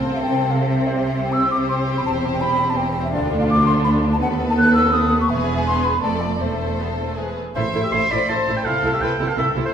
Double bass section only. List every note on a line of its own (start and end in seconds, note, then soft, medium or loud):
0.00 2.06 C2 medium
2.06 3.12 E1 medium
3.14 4.22 D2 medium
4.22 5.29 D#2 medium
5.30 5.98 E1 medium
6.02 6.39 F1 soft
6.41 7.37 E1 soft
7.56 7.64 A1 soft
7.74 7.81 A1 soft
7.93 8.00 A1 soft
8.11 8.18 A1 soft
8.29 8.37 A1 medium
8.47 8.54 A1 soft
8.65 8.72 C2 soft
8.84 8.91 C2 soft
9.01 9.08 C2 medium
9.20 9.27 C2 soft
9.38 9.45 C2 medium
9.56 9.63 C2 soft